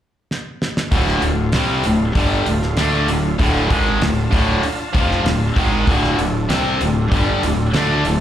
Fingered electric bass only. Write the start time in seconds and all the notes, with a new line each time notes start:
0.92 D1
1.22 D1
1.53 C2
1.84 D1
2.15 G1
2.47 D1
2.77 D2
3.07 D1
3.39 D1
3.70 G#1
4.01 D1
4.32 D1
4.63 muted fingered electric bass stroke
4.95 F1
5.24 D1
5.56 G#1
5.87 D1
6.18 D1
6.49 C2
6.81 D1
7.12 G1
7.42 D1
7.73 D2
8.05 D1